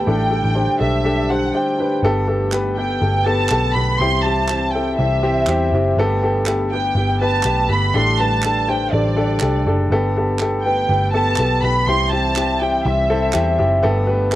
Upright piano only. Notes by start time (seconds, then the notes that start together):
0.06 A2 D4 G4 A4
0.30 D4 G4 A4
0.55 D4 G4 C5
0.79 D4 G4 A4
1.04 D4 G4 A4
1.30 D4 G4 C5
1.54 D4 G4 C5
1.78 D4 G4 B4
2.04 G2 B3 G4 A4
2.27 B3 G4 A4
2.53 B3 G4 B4
2.78 B3 G4 B4
3.01 B3 G4 A4
3.26 B3 G4 A4
3.51 B3 G4 A4
3.75 B3 G4 B4
4.00 C3 C4 E4 G4
4.25 C4 E4 G4
4.50 C4 E4 G4
4.74 C4 E4 A4
4.99 C4 E4 G4
5.23 C4 E4 G4
5.48 C4 E4 G4
5.73 C4 E4 G4
5.98 G2 B3 G4 A4
6.22 B3 G4 A4
6.47 B3 G4 A4
6.73 B3 G4 B4
6.97 B3 G4 B4
7.21 B3 G4 B4
7.45 B3 G4 B4
7.69 B3 G4 B4
7.94 A2 D4 G4 A4
8.19 D4 G4 B4
8.44 D4 G4 A4
8.68 D4 G4 C5
8.93 D4 G4 A4
9.16 D4 G4 A4
9.41 D4 G4 A4
9.67 D4 G4 A4
9.92 G2 B3 G4 A4
10.17 B3 G4 A4
10.40 B3 G4 A4
10.65 B3 G4 B4
10.89 B3 G4 B4
11.13 B3 G4 A4
11.39 B3 G4 A4
11.63 B3 G4 B4
11.88 C3 C4 E4 G4
12.12 C4 E4 G4
12.36 C4 E4 G4
12.61 C4 E4 G4
12.85 C4 E4 G4
13.10 C4 E4 A4
13.33 C4 E4 G4
13.58 C4 E4 G4
13.83 G2 B3 G4 A4
14.07 B3 G4 B4
14.32 B3 G4 A4